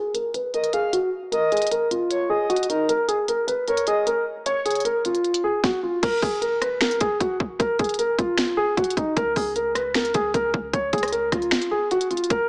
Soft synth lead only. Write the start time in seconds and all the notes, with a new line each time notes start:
0.54 D#5
0.73 F5
1.33 D#5
2.10 C#5
2.30 D#5
2.70 A#4
3.68 C#5
3.87 D#5
4.46 C#5